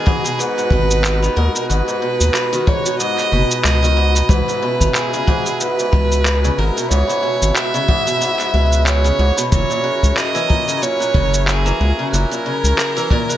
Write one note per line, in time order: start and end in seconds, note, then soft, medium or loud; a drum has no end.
0.00 9.48 G#3 medium
0.00 4.26 B3 medium
0.00 4.26 D#4 medium
0.00 4.26 F#4 medium
0.00 13.37 F#4 medium
0.00 0.40 G#4 medium
0.00 13.37 A#5 medium
0.06 0.22 G#2 medium
0.06 0.16 B5 medium
0.06 kick loud
0.24 0.37 B2 medium
0.24 shaker medium
0.38 0.55 G#2 medium
0.38 1.38 B4 loud
0.38 shaker medium
0.58 0.70 G#2 medium
0.58 0.66 F#6 medium
0.58 shaker soft
0.70 1.29 G#1 loud
0.70 1.21 B2 medium
0.70 kick medium
0.91 shaker medium
1.04 clap loud
1.04 shaker medium
1.22 1.35 D#3 medium
1.22 1.31 B5 medium
1.22 shaker soft
1.36 1.49 D#2 medium
1.36 1.53 G#2 loud
1.36 1.69 A#4 medium
1.55 1.68 B2 medium
1.55 shaker medium
1.69 1.82 G#1 loud
1.69 1.86 G#2 medium
1.69 2.68 B4 loud
1.69 1.79 F#6 medium
1.69 shaker medium
1.88 2.00 G#2 medium
1.88 shaker soft
2.02 2.51 B2 medium
2.20 2.30 D#2 medium
2.20 shaker medium
2.34 2.44 B5 medium
2.34 clap medium
2.34 shaker medium
2.53 2.65 D#3 medium
2.53 shaker soft
2.67 2.83 G#2 medium
2.67 2.99 C#5 medium
2.67 kick loud
2.84 2.98 B2 medium
2.84 2.93 F#6 medium
2.84 shaker medium
2.99 3.16 G#2 medium
2.99 3.60 D#5 loud
2.99 shaker medium
3.18 3.31 G#2 medium
3.18 clap soft
3.18 shaker soft
3.32 3.44 F#1 medium
3.32 3.81 B2 medium
3.32 3.42 B6 medium
3.49 3.63 B5 medium
3.49 shaker medium
3.64 4.22 C#2 medium
3.64 4.31 D#5 loud
3.64 clap loud
3.64 shaker medium
3.83 3.96 D#3 medium
3.83 shaker soft
3.97 4.13 G#2 medium
3.97 4.08 B5 medium
4.15 4.28 B2 medium
4.15 4.29 B5 medium
4.15 shaker medium
4.29 4.42 C#2 medium
4.29 4.46 G#2 medium
4.29 9.47 C#3 medium
4.29 9.47 B3 medium
4.29 13.37 E4 medium
4.29 4.97 B4 loud
4.29 kick loud
4.29 shaker medium
4.48 4.61 G#2 medium
4.48 shaker soft
4.62 5.11 B2 medium
4.80 4.90 G#1 medium
4.80 4.89 B5 medium
4.80 kick medium
4.80 shaker medium
4.94 5.62 G#4 loud
4.94 clap medium
4.94 shaker soft
5.13 5.26 C#3 medium
5.13 shaker soft
5.27 5.44 G#2 loud
5.27 5.38 F#6 medium
5.27 kick medium
5.46 5.59 B2 medium
5.46 shaker medium
5.60 5.77 G#2 medium
5.60 6.60 B4 loud
5.60 shaker medium
5.79 5.92 G#2 medium
5.79 shaker soft
5.92 6.51 C#2 medium
5.92 6.42 B2 medium
5.92 6.03 B5 medium
5.92 kick medium
6.12 shaker medium
6.25 clap loud
6.25 shaker medium
6.43 6.57 C#3 loud
6.43 6.51 F#6 medium
6.43 shaker soft
6.58 6.70 G#1 medium
6.58 6.75 G#2 medium
6.58 6.90 A#4 medium
6.77 6.90 B2 medium
6.77 shaker medium
6.91 7.03 C#2 medium
6.91 7.07 G#2 medium
6.91 7.57 C#5 loud
6.91 shaker medium
7.08 7.22 G#2 medium
7.08 7.16 B5 medium
7.08 shaker soft
7.23 7.72 B2 medium
7.42 7.51 G#1 medium
7.42 shaker medium
7.55 8.86 E5 loud
7.55 7.66 F#6 medium
7.55 clap medium
7.55 shaker medium
7.74 7.87 C#3 medium
7.74 shaker soft
7.88 8.05 G#2 loud
7.88 kick medium
8.07 8.20 B2 medium
8.07 shaker medium
8.20 8.37 G#2 medium
8.20 8.31 B5 medium
8.20 shaker medium
8.39 8.52 G#2 medium
8.39 clap soft
8.39 shaker soft
8.53 9.12 C#2 medium
8.53 9.03 B2 medium
8.71 8.80 F#6 medium
8.71 shaker medium
8.86 9.48 C#5 loud
8.86 clap medium
8.86 shaker medium
9.04 9.17 C#3 medium
9.04 shaker soft
9.19 9.31 C#2 medium
9.19 9.36 G#2 medium
9.37 9.50 B2 medium
9.37 9.45 B5 medium
9.37 shaker medium
9.51 9.64 F#1 loud
9.51 9.68 A#2 medium
9.51 13.37 F#3 medium
9.51 13.37 C#4 medium
9.51 13.37 A#4 medium
9.51 10.19 C#5 loud
9.51 kick loud
9.51 shaker soft
9.70 9.83 A#2 medium
9.70 shaker soft
9.84 10.33 C#3 medium
9.84 9.95 F#6 medium
10.03 10.12 C#2 medium
10.03 kick medium
10.03 shaker medium
10.17 10.84 D#5 loud
10.17 clap medium
10.17 shaker soft
10.35 10.48 E3 loud
10.35 shaker soft
10.48 10.66 A#2 medium
10.48 10.59 A#5 medium
10.48 kick medium
10.68 10.81 C#3 medium
10.68 shaker medium
10.82 10.98 A#2 medium
10.82 11.50 C#5 loud
10.82 shaker soft
11.00 11.13 A#2 medium
11.00 11.08 F#6 medium
11.00 shaker soft
11.14 11.72 F#1 loud
11.14 11.64 C#3 medium
11.14 kick medium
11.34 shaker medium
11.47 12.12 G#4 medium
11.47 clap medium
11.47 shaker medium
11.65 11.79 E3 loud
11.65 11.74 A#5 medium
11.65 shaker soft
11.80 11.92 C#2 medium
11.80 11.97 A#2 medium
11.99 12.11 C#3 medium
12.12 12.25 F#1 loud
12.12 12.29 A#2 medium
12.12 13.37 A#4 loud
12.12 12.23 F#6 medium
12.12 shaker medium
12.31 12.44 A#2 medium
12.31 shaker soft
12.46 12.94 C#3 medium
12.63 12.73 C#2 medium
12.63 shaker medium
12.78 12.88 A#5 medium
12.78 clap medium
12.78 shaker soft
12.97 13.09 E3 loud
12.97 shaker soft
13.10 13.27 A#2 medium
13.10 kick medium
13.29 13.37 C#3 medium
13.29 13.37 F#6 medium
13.29 shaker medium